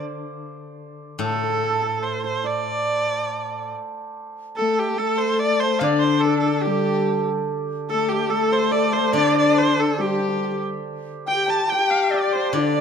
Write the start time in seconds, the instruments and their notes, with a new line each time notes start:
Already playing: guzheng D3, hammered dulcimer C5 D5 F5
1.19 guzheng A2, hammered dulcimer A4, erhu A4
1.31 hammered dulcimer A4
1.35 hammered dulcimer A4
1.44 hammered dulcimer A4
1.50 hammered dulcimer A4
1.57 hammered dulcimer A4
1.64 hammered dulcimer A4
1.70 hammered dulcimer A4
1.82 hammered dulcimer A4
2.03 erhu C5
2.24 hammered dulcimer C5, erhu C5
2.44 hammered dulcimer D5, erhu D5
4.56 horsehead fiddle A3, erhu A4, dizi A4, hammered dulcimer A4
4.79 erhu G4
4.98 horsehead fiddle A3, erhu A4, hammered dulcimer A4, dizi A4
5.18 erhu C5
5.39 erhu D5, dizi D5
5.60 erhu C5, dizi C5
5.79 guzheng D3, horsehead fiddle D4, hammered dulcimer D5, erhu F5
5.84 dizi D5
5.99 erhu C5
6.04 dizi C5
6.20 erhu A4
6.25 dizi A4, hammered dulcimer A4
6.39 erhu A4
6.45 dizi A4, hammered dulcimer A4
6.61 erhu G4, hammered dulcimer A4
6.65 horsehead fiddle G3, hammered dulcimer G4, dizi A4
6.72 dizi G4
7.89 horsehead fiddle A3, hammered dulcimer A4, erhu A4, dizi A4
8.09 erhu G4, hammered dulcimer G4, dizi G4
8.30 horsehead fiddle A3, erhu A4, hammered dulcimer A4, dizi A4
8.52 hammered dulcimer C5, erhu C5
8.71 hammered dulcimer D5, erhu D5
8.93 erhu C5, hammered dulcimer C5, dizi D5
9.00 dizi C5
9.13 guzheng D3, horsehead fiddle D4, hammered dulcimer D5, erhu D5, dizi D5
9.35 hammered dulcimer D5, dizi D5, erhu D5
9.48 hammered dulcimer D5
9.55 hammered dulcimer C5, erhu C5
9.78 dizi A4, erhu A4
9.98 horsehead fiddle G3, dizi G4, hammered dulcimer G4, erhu G4
10.05 hammered dulcimer G4
10.14 hammered dulcimer G4
10.20 hammered dulcimer G4
10.29 hammered dulcimer G4
10.37 hammered dulcimer G4
10.44 hammered dulcimer G4
10.52 hammered dulcimer G4
11.26 dizi G5, hammered dulcimer G5, erhu G5
11.30 horsehead fiddle G4
11.47 dizi A5, hammered dulcimer A5, erhu A5
11.68 dizi G5, erhu G5
11.72 horsehead fiddle G4, hammered dulcimer G5
11.90 erhu F5, hammered dulcimer F5
12.10 dizi D5, erhu D5, hammered dulcimer D5
12.33 erhu C5, hammered dulcimer C5
12.52 guzheng D3, dizi D5, erhu D5, hammered dulcimer D5
12.57 horsehead fiddle D4
12.64 hammered dulcimer D5
12.73 hammered dulcimer D5
12.78 hammered dulcimer D5